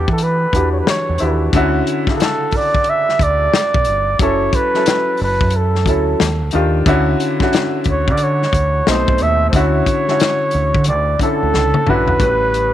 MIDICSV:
0, 0, Header, 1, 5, 480
1, 0, Start_track
1, 0, Key_signature, 2, "major"
1, 0, Tempo, 666667
1, 1100, Time_signature, 4, 2, 24, 8
1, 9170, End_track
2, 0, Start_track
2, 0, Title_t, "Flugelhorn"
2, 0, Program_c, 0, 56
2, 87, Note_on_c, 0, 69, 86
2, 165, Note_on_c, 0, 71, 97
2, 176, Note_off_c, 0, 69, 0
2, 507, Note_off_c, 0, 71, 0
2, 520, Note_on_c, 0, 73, 62
2, 568, Note_on_c, 0, 71, 80
2, 578, Note_off_c, 0, 73, 0
2, 638, Note_off_c, 0, 71, 0
2, 647, Note_on_c, 0, 73, 89
2, 999, Note_off_c, 0, 73, 0
2, 1598, Note_on_c, 0, 69, 93
2, 1845, Note_on_c, 0, 74, 104
2, 1856, Note_off_c, 0, 69, 0
2, 2083, Note_on_c, 0, 76, 115
2, 2094, Note_off_c, 0, 74, 0
2, 2324, Note_on_c, 0, 74, 113
2, 2335, Note_off_c, 0, 76, 0
2, 3029, Note_off_c, 0, 74, 0
2, 3034, Note_on_c, 0, 73, 104
2, 3278, Note_on_c, 0, 71, 105
2, 3289, Note_off_c, 0, 73, 0
2, 3749, Note_off_c, 0, 71, 0
2, 3761, Note_on_c, 0, 71, 92
2, 4005, Note_on_c, 0, 69, 81
2, 4016, Note_off_c, 0, 71, 0
2, 4713, Note_off_c, 0, 69, 0
2, 5692, Note_on_c, 0, 73, 91
2, 5840, Note_on_c, 0, 74, 96
2, 5851, Note_off_c, 0, 73, 0
2, 5927, Note_on_c, 0, 73, 101
2, 5937, Note_off_c, 0, 74, 0
2, 6402, Note_on_c, 0, 72, 100
2, 6412, Note_off_c, 0, 73, 0
2, 6642, Note_on_c, 0, 76, 106
2, 6653, Note_off_c, 0, 72, 0
2, 6833, Note_off_c, 0, 76, 0
2, 6837, Note_on_c, 0, 72, 74
2, 6883, Note_on_c, 0, 73, 110
2, 6894, Note_off_c, 0, 72, 0
2, 7829, Note_off_c, 0, 73, 0
2, 7833, Note_on_c, 0, 74, 86
2, 8050, Note_off_c, 0, 74, 0
2, 8080, Note_on_c, 0, 69, 90
2, 8563, Note_on_c, 0, 71, 108
2, 8574, Note_off_c, 0, 69, 0
2, 9170, Note_off_c, 0, 71, 0
2, 9170, End_track
3, 0, Start_track
3, 0, Title_t, "Upright piano"
3, 0, Program_c, 1, 0
3, 0, Control_c, 1, 64, 127
3, 0, Note_on_c, 1, 52, 68
3, 0, Note_on_c, 1, 62, 64
3, 0, Note_on_c, 1, 66, 81
3, 0, Note_on_c, 1, 67, 94
3, 0, Note_on_c, 1, 68, 65
3, 0, Note_on_c, 1, 69, 84
3, 0, Note_on_c, 1, 78, 65
3, 321, Note_off_c, 1, 52, 0
3, 323, Note_off_c, 1, 62, 0
3, 327, Note_off_c, 1, 78, 0
3, 353, Note_off_c, 1, 69, 0
3, 389, Note_on_c, 1, 52, 70
3, 393, Note_on_c, 1, 62, 61
3, 400, Note_off_c, 1, 66, 0
3, 400, Note_on_c, 1, 66, 64
3, 405, Note_off_c, 1, 67, 0
3, 405, Note_on_c, 1, 67, 78
3, 830, Note_off_c, 1, 52, 0
3, 832, Note_off_c, 1, 62, 0
3, 836, Note_off_c, 1, 66, 0
3, 838, Note_off_c, 1, 67, 0
3, 864, Note_on_c, 1, 64, 75
3, 871, Note_on_c, 1, 62, 64
3, 877, Note_on_c, 1, 66, 63
3, 883, Note_on_c, 1, 67, 75
3, 1085, Note_off_c, 1, 64, 0
3, 1089, Note_off_c, 1, 62, 0
3, 1092, Note_off_c, 1, 66, 0
3, 1095, Note_off_c, 1, 67, 0
3, 1108, Note_on_c, 1, 50, 100
3, 1110, Control_c, 1, 64, 0
3, 1113, Note_off_c, 1, 68, 0
3, 1114, Note_on_c, 1, 61, 98
3, 1122, Note_on_c, 1, 64, 98
3, 1128, Note_on_c, 1, 66, 115
3, 1225, Control_c, 1, 64, 127
3, 1452, Note_off_c, 1, 50, 0
3, 1455, Note_off_c, 1, 61, 0
3, 1459, Note_off_c, 1, 64, 0
3, 1462, Note_off_c, 1, 66, 0
3, 1498, Note_on_c, 1, 50, 68
3, 1503, Note_on_c, 1, 49, 62
3, 1510, Note_on_c, 1, 64, 63
3, 1517, Note_on_c, 1, 68, 60
3, 1539, Note_off_c, 1, 68, 0
3, 1562, Note_on_c, 1, 69, 74
3, 2336, Note_off_c, 1, 50, 0
3, 2339, Note_off_c, 1, 49, 0
3, 2342, Note_off_c, 1, 64, 0
3, 2368, Note_off_c, 1, 69, 0
3, 3020, Note_on_c, 1, 54, 85
3, 3028, Note_on_c, 1, 61, 82
3, 3031, Control_c, 1, 64, 0
3, 3035, Note_on_c, 1, 64, 79
3, 3040, Note_on_c, 1, 69, 90
3, 3156, Control_c, 1, 64, 127
3, 3368, Note_off_c, 1, 54, 0
3, 3372, Note_off_c, 1, 61, 0
3, 3375, Note_off_c, 1, 64, 0
3, 3378, Note_off_c, 1, 69, 0
3, 3413, Note_on_c, 1, 54, 75
3, 3420, Note_on_c, 1, 61, 63
3, 3427, Note_on_c, 1, 64, 66
3, 3433, Note_on_c, 1, 69, 79
3, 4161, Note_off_c, 1, 54, 0
3, 4164, Note_off_c, 1, 61, 0
3, 4168, Note_off_c, 1, 64, 0
3, 4170, Note_off_c, 1, 69, 0
3, 4221, Note_on_c, 1, 54, 77
3, 4228, Note_on_c, 1, 61, 66
3, 4233, Note_on_c, 1, 64, 69
3, 4241, Note_on_c, 1, 69, 79
3, 4461, Note_off_c, 1, 54, 0
3, 4464, Note_off_c, 1, 61, 0
3, 4467, Note_off_c, 1, 64, 0
3, 4470, Control_c, 1, 64, 0
3, 4471, Note_off_c, 1, 69, 0
3, 4604, Control_c, 1, 64, 127
3, 4700, Note_on_c, 1, 51, 89
3, 4706, Note_on_c, 1, 62, 80
3, 4714, Note_on_c, 1, 65, 88
3, 4719, Note_on_c, 1, 67, 95
3, 4923, Note_off_c, 1, 51, 0
3, 4926, Note_off_c, 1, 62, 0
3, 4930, Note_off_c, 1, 65, 0
3, 4933, Note_off_c, 1, 67, 0
3, 4939, Note_on_c, 1, 50, 111
3, 4947, Note_on_c, 1, 61, 102
3, 4950, Control_c, 1, 64, 0
3, 4952, Note_on_c, 1, 64, 98
3, 4959, Note_on_c, 1, 66, 118
3, 5083, Control_c, 1, 64, 127
3, 5287, Note_off_c, 1, 50, 0
3, 5291, Note_off_c, 1, 61, 0
3, 5294, Note_off_c, 1, 64, 0
3, 5297, Note_off_c, 1, 66, 0
3, 5330, Note_on_c, 1, 50, 85
3, 5339, Note_on_c, 1, 61, 77
3, 5345, Note_on_c, 1, 64, 78
3, 5350, Note_on_c, 1, 66, 99
3, 6172, Note_off_c, 1, 50, 0
3, 6177, Note_off_c, 1, 61, 0
3, 6180, Note_off_c, 1, 64, 0
3, 6182, Note_off_c, 1, 66, 0
3, 6386, Note_on_c, 1, 47, 77
3, 6391, Control_c, 1, 64, 0
3, 6391, Note_on_c, 1, 57, 68
3, 6399, Note_on_c, 1, 60, 79
3, 6405, Note_on_c, 1, 63, 86
3, 6530, Control_c, 1, 64, 127
3, 6829, Note_off_c, 1, 47, 0
3, 6831, Note_off_c, 1, 57, 0
3, 6835, Note_off_c, 1, 60, 0
3, 6838, Note_off_c, 1, 63, 0
3, 6867, Note_on_c, 1, 50, 88
3, 6869, Control_c, 1, 64, 0
3, 6872, Note_on_c, 1, 61, 82
3, 6878, Note_on_c, 1, 64, 90
3, 6883, Note_on_c, 1, 66, 104
3, 6975, Control_c, 1, 64, 127
3, 7211, Note_off_c, 1, 50, 0
3, 7214, Note_off_c, 1, 61, 0
3, 7217, Note_off_c, 1, 64, 0
3, 7219, Note_off_c, 1, 66, 0
3, 7258, Note_on_c, 1, 50, 70
3, 7263, Note_on_c, 1, 61, 66
3, 7269, Note_on_c, 1, 64, 64
3, 7277, Note_on_c, 1, 66, 78
3, 8003, Note_off_c, 1, 50, 0
3, 8006, Note_off_c, 1, 61, 0
3, 8009, Note_off_c, 1, 64, 0
3, 8013, Note_off_c, 1, 66, 0
3, 8067, Note_on_c, 1, 50, 74
3, 8074, Note_on_c, 1, 61, 60
3, 8081, Note_on_c, 1, 64, 69
3, 8086, Note_on_c, 1, 69, 82
3, 8509, Note_off_c, 1, 50, 0
3, 8513, Note_off_c, 1, 61, 0
3, 8516, Note_off_c, 1, 64, 0
3, 8519, Note_off_c, 1, 69, 0
3, 8546, Note_on_c, 1, 50, 87
3, 8552, Note_on_c, 1, 61, 75
3, 8559, Note_on_c, 1, 64, 77
3, 8566, Note_on_c, 1, 66, 99
3, 8766, Note_off_c, 1, 50, 0
3, 8769, Note_off_c, 1, 61, 0
3, 8772, Note_off_c, 1, 64, 0
3, 8776, Note_off_c, 1, 66, 0
3, 8784, Note_on_c, 1, 45, 78
3, 8790, Control_c, 1, 64, 0
3, 8791, Note_on_c, 1, 55, 78
3, 8797, Note_on_c, 1, 61, 67
3, 8802, Note_on_c, 1, 71, 92
3, 8926, Control_c, 1, 64, 127
3, 9130, Note_off_c, 1, 45, 0
3, 9133, Note_off_c, 1, 55, 0
3, 9136, Note_off_c, 1, 61, 0
3, 9139, Note_off_c, 1, 71, 0
3, 9170, End_track
4, 0, Start_track
4, 0, Title_t, "Fingered electric bass"
4, 0, Program_c, 2, 33
4, 63, Note_on_c, 2, 52, 100
4, 326, Note_off_c, 2, 52, 0
4, 388, Note_on_c, 2, 40, 91
4, 580, Note_off_c, 2, 40, 0
4, 787, Note_on_c, 2, 40, 84
4, 852, Note_off_c, 2, 40, 0
4, 876, Note_on_c, 2, 39, 86
4, 1065, Note_off_c, 2, 39, 0
4, 1108, Note_on_c, 2, 38, 96
4, 1301, Note_off_c, 2, 38, 0
4, 2307, Note_on_c, 2, 38, 94
4, 2500, Note_off_c, 2, 38, 0
4, 2702, Note_on_c, 2, 35, 77
4, 2770, Note_off_c, 2, 35, 0
4, 2796, Note_on_c, 2, 31, 91
4, 2985, Note_off_c, 2, 31, 0
4, 3025, Note_on_c, 2, 30, 85
4, 3219, Note_off_c, 2, 30, 0
4, 3752, Note_on_c, 2, 30, 95
4, 3871, Note_off_c, 2, 30, 0
4, 3901, Note_on_c, 2, 42, 104
4, 4223, Note_off_c, 2, 42, 0
4, 4223, Note_on_c, 2, 38, 94
4, 4417, Note_off_c, 2, 38, 0
4, 4474, Note_on_c, 2, 39, 99
4, 4627, Note_off_c, 2, 39, 0
4, 4627, Note_on_c, 2, 38, 92
4, 4692, Note_off_c, 2, 38, 0
4, 4711, Note_on_c, 2, 39, 99
4, 4902, Note_off_c, 2, 39, 0
4, 4945, Note_on_c, 2, 38, 105
4, 5139, Note_off_c, 2, 38, 0
4, 5663, Note_on_c, 2, 38, 95
4, 5822, Note_on_c, 2, 50, 98
4, 5833, Note_off_c, 2, 38, 0
4, 6085, Note_off_c, 2, 50, 0
4, 6147, Note_on_c, 2, 38, 86
4, 6340, Note_off_c, 2, 38, 0
4, 6394, Note_on_c, 2, 35, 96
4, 6512, Note_off_c, 2, 35, 0
4, 6543, Note_on_c, 2, 35, 86
4, 6610, Note_off_c, 2, 35, 0
4, 6634, Note_on_c, 2, 39, 97
4, 6824, Note_off_c, 2, 39, 0
4, 6869, Note_on_c, 2, 38, 99
4, 7061, Note_off_c, 2, 38, 0
4, 7593, Note_on_c, 2, 38, 90
4, 7712, Note_off_c, 2, 38, 0
4, 7742, Note_on_c, 2, 50, 102
4, 7834, Note_on_c, 2, 38, 112
4, 7845, Note_off_c, 2, 50, 0
4, 8024, Note_off_c, 2, 38, 0
4, 8228, Note_on_c, 2, 38, 90
4, 8293, Note_off_c, 2, 38, 0
4, 8318, Note_on_c, 2, 37, 88
4, 8435, Note_off_c, 2, 37, 0
4, 8556, Note_on_c, 2, 34, 91
4, 8745, Note_off_c, 2, 34, 0
4, 8788, Note_on_c, 2, 33, 83
4, 9170, Note_off_c, 2, 33, 0
4, 9170, End_track
5, 0, Start_track
5, 0, Title_t, "Drums"
5, 57, Note_on_c, 9, 36, 95
5, 129, Note_off_c, 9, 36, 0
5, 129, Note_on_c, 9, 42, 82
5, 201, Note_off_c, 9, 42, 0
5, 381, Note_on_c, 9, 36, 85
5, 392, Note_on_c, 9, 42, 67
5, 453, Note_off_c, 9, 36, 0
5, 464, Note_off_c, 9, 42, 0
5, 627, Note_on_c, 9, 38, 116
5, 638, Note_on_c, 9, 42, 94
5, 699, Note_off_c, 9, 38, 0
5, 710, Note_off_c, 9, 42, 0
5, 850, Note_on_c, 9, 42, 67
5, 922, Note_off_c, 9, 42, 0
5, 1102, Note_on_c, 9, 36, 126
5, 1104, Note_on_c, 9, 42, 78
5, 1174, Note_off_c, 9, 36, 0
5, 1176, Note_off_c, 9, 42, 0
5, 1345, Note_on_c, 9, 42, 76
5, 1417, Note_off_c, 9, 42, 0
5, 1491, Note_on_c, 9, 36, 93
5, 1498, Note_on_c, 9, 38, 36
5, 1563, Note_off_c, 9, 36, 0
5, 1570, Note_off_c, 9, 38, 0
5, 1584, Note_on_c, 9, 42, 89
5, 1598, Note_on_c, 9, 38, 106
5, 1656, Note_off_c, 9, 42, 0
5, 1670, Note_off_c, 9, 38, 0
5, 1808, Note_on_c, 9, 46, 40
5, 1818, Note_on_c, 9, 36, 81
5, 1880, Note_off_c, 9, 46, 0
5, 1890, Note_off_c, 9, 36, 0
5, 1977, Note_on_c, 9, 36, 95
5, 2045, Note_on_c, 9, 42, 86
5, 2049, Note_off_c, 9, 36, 0
5, 2117, Note_off_c, 9, 42, 0
5, 2225, Note_on_c, 9, 38, 33
5, 2297, Note_off_c, 9, 38, 0
5, 2300, Note_on_c, 9, 36, 84
5, 2309, Note_on_c, 9, 42, 59
5, 2372, Note_off_c, 9, 36, 0
5, 2381, Note_off_c, 9, 42, 0
5, 2546, Note_on_c, 9, 38, 105
5, 2557, Note_on_c, 9, 42, 101
5, 2618, Note_off_c, 9, 38, 0
5, 2629, Note_off_c, 9, 42, 0
5, 2696, Note_on_c, 9, 36, 106
5, 2768, Note_off_c, 9, 36, 0
5, 2768, Note_on_c, 9, 42, 69
5, 2840, Note_off_c, 9, 42, 0
5, 3020, Note_on_c, 9, 36, 125
5, 3022, Note_on_c, 9, 42, 81
5, 3092, Note_off_c, 9, 36, 0
5, 3094, Note_off_c, 9, 42, 0
5, 3260, Note_on_c, 9, 36, 98
5, 3261, Note_on_c, 9, 42, 76
5, 3332, Note_off_c, 9, 36, 0
5, 3333, Note_off_c, 9, 42, 0
5, 3415, Note_on_c, 9, 38, 38
5, 3487, Note_off_c, 9, 38, 0
5, 3498, Note_on_c, 9, 42, 88
5, 3512, Note_on_c, 9, 38, 101
5, 3570, Note_off_c, 9, 42, 0
5, 3584, Note_off_c, 9, 38, 0
5, 3723, Note_on_c, 9, 46, 43
5, 3795, Note_off_c, 9, 46, 0
5, 3893, Note_on_c, 9, 36, 102
5, 3962, Note_on_c, 9, 42, 89
5, 3965, Note_off_c, 9, 36, 0
5, 4034, Note_off_c, 9, 42, 0
5, 4142, Note_on_c, 9, 38, 37
5, 4214, Note_off_c, 9, 38, 0
5, 4217, Note_on_c, 9, 36, 87
5, 4227, Note_on_c, 9, 42, 68
5, 4289, Note_off_c, 9, 36, 0
5, 4299, Note_off_c, 9, 42, 0
5, 4464, Note_on_c, 9, 38, 117
5, 4475, Note_on_c, 9, 42, 92
5, 4536, Note_off_c, 9, 38, 0
5, 4547, Note_off_c, 9, 42, 0
5, 4686, Note_on_c, 9, 42, 68
5, 4758, Note_off_c, 9, 42, 0
5, 4939, Note_on_c, 9, 36, 127
5, 4942, Note_on_c, 9, 42, 78
5, 5011, Note_off_c, 9, 36, 0
5, 5014, Note_off_c, 9, 42, 0
5, 5184, Note_on_c, 9, 42, 81
5, 5256, Note_off_c, 9, 42, 0
5, 5329, Note_on_c, 9, 36, 91
5, 5336, Note_on_c, 9, 38, 38
5, 5401, Note_off_c, 9, 36, 0
5, 5408, Note_off_c, 9, 38, 0
5, 5419, Note_on_c, 9, 42, 82
5, 5434, Note_on_c, 9, 38, 105
5, 5491, Note_off_c, 9, 42, 0
5, 5506, Note_off_c, 9, 38, 0
5, 5645, Note_on_c, 9, 42, 57
5, 5657, Note_on_c, 9, 36, 86
5, 5717, Note_off_c, 9, 42, 0
5, 5729, Note_off_c, 9, 36, 0
5, 5815, Note_on_c, 9, 36, 102
5, 5885, Note_on_c, 9, 42, 81
5, 5887, Note_off_c, 9, 36, 0
5, 5957, Note_off_c, 9, 42, 0
5, 6065, Note_on_c, 9, 38, 37
5, 6137, Note_off_c, 9, 38, 0
5, 6140, Note_on_c, 9, 36, 89
5, 6150, Note_on_c, 9, 42, 68
5, 6212, Note_off_c, 9, 36, 0
5, 6222, Note_off_c, 9, 42, 0
5, 6385, Note_on_c, 9, 38, 114
5, 6396, Note_on_c, 9, 42, 93
5, 6457, Note_off_c, 9, 38, 0
5, 6468, Note_off_c, 9, 42, 0
5, 6538, Note_on_c, 9, 36, 100
5, 6610, Note_off_c, 9, 36, 0
5, 6610, Note_on_c, 9, 42, 66
5, 6682, Note_off_c, 9, 42, 0
5, 6861, Note_on_c, 9, 36, 112
5, 6863, Note_on_c, 9, 42, 85
5, 6933, Note_off_c, 9, 36, 0
5, 6935, Note_off_c, 9, 42, 0
5, 7102, Note_on_c, 9, 36, 86
5, 7104, Note_on_c, 9, 42, 77
5, 7174, Note_off_c, 9, 36, 0
5, 7176, Note_off_c, 9, 42, 0
5, 7259, Note_on_c, 9, 38, 36
5, 7331, Note_off_c, 9, 38, 0
5, 7341, Note_on_c, 9, 42, 90
5, 7356, Note_on_c, 9, 38, 101
5, 7413, Note_off_c, 9, 42, 0
5, 7428, Note_off_c, 9, 38, 0
5, 7566, Note_on_c, 9, 42, 62
5, 7638, Note_off_c, 9, 42, 0
5, 7736, Note_on_c, 9, 36, 97
5, 7805, Note_on_c, 9, 42, 85
5, 7808, Note_off_c, 9, 36, 0
5, 7877, Note_off_c, 9, 42, 0
5, 8060, Note_on_c, 9, 36, 83
5, 8069, Note_on_c, 9, 42, 67
5, 8132, Note_off_c, 9, 36, 0
5, 8141, Note_off_c, 9, 42, 0
5, 8308, Note_on_c, 9, 38, 59
5, 8380, Note_off_c, 9, 38, 0
5, 8453, Note_on_c, 9, 48, 66
5, 8525, Note_off_c, 9, 48, 0
5, 8543, Note_on_c, 9, 45, 93
5, 8615, Note_off_c, 9, 45, 0
5, 8695, Note_on_c, 9, 43, 84
5, 8767, Note_off_c, 9, 43, 0
5, 8782, Note_on_c, 9, 36, 110
5, 8785, Note_on_c, 9, 42, 71
5, 8854, Note_off_c, 9, 36, 0
5, 8857, Note_off_c, 9, 42, 0
5, 9028, Note_on_c, 9, 42, 65
5, 9100, Note_off_c, 9, 42, 0
5, 9170, End_track
0, 0, End_of_file